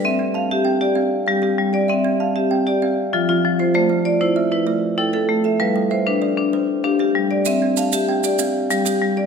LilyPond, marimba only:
\new Staff \with { instrumentName = "Marimba" } { \time 12/8 \key c \major \tempo 4. = 129 << { <b' e''>4 f''8 e''4 d''4 r8 g'8 g'4 d''8 | e''4 f''8 e''4 d''4 r8 f'8 f'4 c''8 | c''4 d''8 c''4 b'4. a'8 a'4 e''8 | b'4 c''8 b'4. r4 g'8 g'4 d''8 |
e''4 f''8 e''4 d''4 r8 g'8 g'4 d''8 | } \\ { c'4 r8 g'4 g'8 r4 g4 g4 | c'4 r8 g'4 g'8 r4 f4 f4 | a4 r8 e'4 e'4 r8 e'4 a4 | g4 r8 d'4 d'4 r8 d'4 g4 |
c'4 r8 g'4 g'8 r4 g4 g4 | } >> }